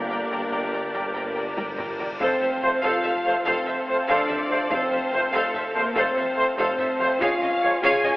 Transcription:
Already playing: double bass section G1, tuba G1, cello section G2, trombone section D3 A#3, french horn section A#3, string section D4 G4 A#4 D5, violin section A#4, cymbal swell
0.10 viola section A#4 D5, violin section G5 A#5
0.31 tuba G1, double bass section G1, cello section G2, viola section A#4 D5, violin section G5 A#5
0.52 viola section A#4 D5, violin section G5 A#5, taiko low-mid
0.73 viola section A#4 D5, violin section G5 A#5
0.94 double bass section G1, tuba G1, cello section G2, viola section A#4 D5, violin section G5 A#5, taiko
1.15 viola section A#4 D5, violin section G5 A#5
1.35 viola section A#4 D5, violin section G5 A#5
1.56 double bass section G1, tuba G1, cello section G2, viola section A#4 D5, violin section G5 A#5, taiko high
1.78 viola section A#4 D5, violin section G5 A#5, taiko low-mid
1.99 viola section A#4 D5, violin section G5 A#5, taiko low
2.19 double bass section F1, tuba F1, cello section F2, french horn section C4, string section C4 F4 A4 F5, viola section A4 C5, violin section C5 F5, taiko, impact
2.41 tuba F1, double bass section F1, cello section F2, viola section A4 C5, violin section E5
2.62 tuba F1, double bass section F1, cello section F2, trombone section F3 A3, viola section A4 C5, trumpet section C5, violin section F5
2.82 tuba F1, double bass section F1, cello section F2, french horn section F4, viola section A4 C5, violin section F5
3.03 tuba F1, double bass section F1, cello section F2, viola section A4 C5, violin section E5, taiko low-mid
3.25 tuba F1, double bass section F1, cello section F2, trombone section F3 A3, viola section A4 C5, trumpet section C5, violin section F5
3.45 double bass section F1, tuba F1, cello section F2, french horn section C4, viola section A4 C5, violin section C5 F5, taiko
3.66 tuba F1, double bass section F1, cello section F2, viola section A4 C5, violin section E5
3.87 trombone section F3 A3, trumpet section C5
4.08 tuba F1, double bass section F1, cello section F2, french horn section D4, viola section A4 C5, violin section D5 F5, taiko
4.28 double bass section F1, tuba F1, cello section F2, viola section A4 C5, violin section E5, taiko low-mid
4.49 tuba F1, double bass section F1, cello section F2, trombone section F3 A3, viola section A4 C5, trumpet section C5, violin section F5
4.70 double bass section F1, tuba F1, cello section F2, french horn section C4, viola section A4 C5, violin section C5 F5, taiko
4.91 tuba F1, double bass section F1, cello section F2, viola section A4 C5, violin section E5
5.12 tuba F1, double bass section F1, cello section F2, trombone section F3 A3, viola section A4 C5, trumpet section C5, violin section F5
5.32 tuba F1, double bass section F1, cello section F2, french horn section A3, violin section A4 F5, viola section A4 C5
5.54 tuba F1, double bass section F1, cello section F2, viola section A4 C5, violin section E5, taiko low-mid
5.74 tuba F1, double bass section F1, cello section F2, trombone section F3 A3, french horn section A#3, viola section A4 C5, violin section A#4 F5, trumpet section C5
5.95 tuba F1, double bass section F1, cello section F2, french horn section C4, viola section A4 C5, violin section C5 F5, taiko
6.16 tuba F1, double bass section F1, cello section F2, viola section A4 C5, violin section E5
6.36 trombone section F3 A3, trumpet section C5
6.57 tuba F1, double bass section F1, cello section F2, french horn section C4, viola section A4 C5, violin section C5 F5, taiko
6.78 tuba F1, double bass section F1, cello section F2, viola section A4 C5, violin section E5, taiko low-mid
6.99 tuba F1, double bass section F1, cello section F2, trombone section F3 A3, viola section A4 C5, trumpet section C5, violin section F5
7.20 tuba C#2, double bass section C#2, cello section C#3, string section C#4 F4 G#4 F5, french horn section F4, viola section G#4 C#5, violin section F5, taiko
7.41 tuba C#2, double bass section C#2, cello section C#3, viola section G#4 C#5, violin section D#5
7.61 tuba C#2, double bass section C#2, cello section C#3, trombone section F3 G#3, viola section G#4 C#5, trumpet section C#5, violin section F5
7.82 tuba C#2, double bass section C#2, cello section C#3, french horn section G#4, viola section G#4 C#5, violin section F5 G#5
8.03 double bass section C#2, tuba C#2, cello section C#3, viola section G#4 C#5, violin section D#5, taiko low-mid

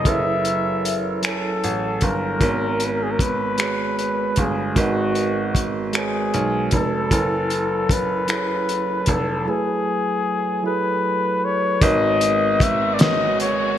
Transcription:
Already playing: tine electric piano F#3 E4 G#4 A4 C#5, flugelhorn D#5
0.04 grand piano F#1, tine electric piano F#3 E4 G#4 A4, kick, closed hi-hat
0.08 tine electric piano B4, flugelhorn E5
0.45 closed hi-hat
0.85 closed hi-hat
1.22 tine electric piano F#3 E4 A4 G#5, flugelhorn A4, finger snap, closed hi-hat
1.26 tine electric piano C#5
1.64 grand piano A1, closed hi-hat
2.01 grand piano G1, flugelhorn A#4, kick, closed hi-hat
2.39 grand piano G#1, tine electric piano G#3 B3 F#4 A#4, kick, closed hi-hat
2.44 tine electric piano C#5
2.80 closed hi-hat
2.85 flugelhorn B4
2.93 flugelhorn A#4
3.03 flugelhorn G#4
3.11 flugelhorn A#4
3.19 flugelhorn B4, kick, closed hi-hat
3.58 tine electric piano G#3 F#4 G#4 B4, finger snap, closed hi-hat
3.62 tine electric piano C#5
3.99 closed hi-hat
4.36 grand piano G1, flugelhorn G#4, kick, closed hi-hat
4.75 grand piano G#1, tine electric piano G#3 F#4 A#4 B4, kick, closed hi-hat
4.80 flugelhorn F#4, tine electric piano D#5
5.15 closed hi-hat
5.55 kick, closed hi-hat
5.93 tine electric piano G#3 F#4 A#4 B4, flugelhorn G#4, finger snap, closed hi-hat
5.97 tine electric piano C#5
6.34 grand piano B1, closed hi-hat
6.71 grand piano F1, kick, closed hi-hat
6.75 flugelhorn A4
7.10 grand piano F#1, tine electric piano F#3 E4 A4 G#5, kick, closed hi-hat
7.15 tine electric piano B4
7.50 closed hi-hat
7.89 flugelhorn B4, kick, closed hi-hat
8.27 tine electric piano F#3 E4 G#4 A4, finger snap, closed hi-hat
8.32 tine electric piano C#5
8.69 closed hi-hat
9.06 grand piano F1, flugelhorn A4, kick, closed hi-hat
9.46 tine electric piano F#3 A3 E4 G#4
9.50 flugelhorn G#4, tine electric piano B4
10.63 tine electric piano F#3 E4 G#4 A4, flugelhorn B4
10.67 tine electric piano B4
11.45 flugelhorn C#5
11.80 grand piano G#1, tine electric piano G#3 F#4 A#4 B4, string section G#3 B3 F#4, flugelhorn D#5, kick, closed hi-hat
11.85 tine electric piano C#5
12.21 closed hi-hat
12.60 flugelhorn E5, kick, closed hi-hat
12.94 flugelhorn D5
12.99 tine electric piano G#3 F#4 A#4 B4, flugelhorn D#5, snare, closed hi-hat
13.03 tine electric piano C#5
13.40 flugelhorn C#5, closed hi-hat

